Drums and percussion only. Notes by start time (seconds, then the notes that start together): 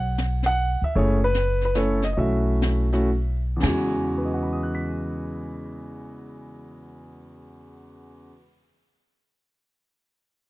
0.18 snare, hi-hat pedal
0.43 snare
0.82 kick
0.95 brush sweep, kick
1.34 snare, hi-hat pedal
1.61 snare
1.75 snare, hi-hat pedal
2.02 snare
2.17 brush sweep, kick
2.62 snare, hi-hat pedal
2.92 snare
3.63 snare, floor tom, crash